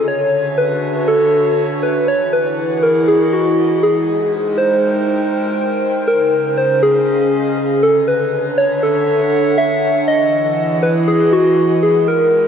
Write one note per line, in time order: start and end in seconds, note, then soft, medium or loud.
0.00 2.08 D3 medium
0.00 2.08 D4 medium
0.00 2.08 E5 medium
0.08 0.59 C#5 loud
0.26 2.79 F#4 loud
0.48 2.79 C#5 medium
0.58 1.09 B4 loud
1.08 1.84 A4 loud
1.83 2.10 B4 medium
2.08 3.83 E3 medium
2.08 2.34 C#5 loud
2.20 3.83 E4 medium
2.24 4.75 G#4 medium
2.28 3.83 F#5 medium
2.33 2.82 B4 loud
2.54 4.75 D#5 medium
2.83 3.09 A#4 medium
3.08 3.34 G#4 medium
3.33 3.85 F#4 medium
3.83 6.08 G#3 loud
3.83 4.59 G#4 medium
4.00 6.79 A#4 medium
4.00 7.83 C5 medium
4.04 6.79 D#4 medium
4.32 6.79 G5 medium
4.58 5.08 C5 loud
6.08 7.83 C#3 medium
6.08 6.59 A#4 loud
6.25 7.83 C#4 loud
6.58 6.84 C5 loud
6.69 7.83 D#5 medium
6.69 7.83 F5 medium
6.83 7.84 G#4 loud
7.83 10.08 D3 medium
7.83 8.07 A4 medium
7.98 10.08 D4 medium
8.08 8.59 B4 loud
8.08 10.79 C#5 medium
8.40 10.08 E5 medium
8.56 8.85 C#5 loud
8.56 11.83 F#5 medium
8.83 9.59 A4 loud
9.58 10.07 E5 loud
10.08 11.83 E3 loud
10.08 10.79 D#5 loud
10.24 11.83 E4 medium
10.34 12.48 G#4 medium
10.58 12.48 D#5 medium
10.83 10.94 B4 loud
11.08 11.31 G#4 loud
11.33 11.79 F#4 loud
11.83 12.48 G#3 medium
11.83 12.10 G#4 medium
11.98 12.48 D#4 medium
11.98 12.48 A#4 medium
12.08 12.48 A#4 loud
12.36 12.48 C5 medium
12.42 12.48 G5 medium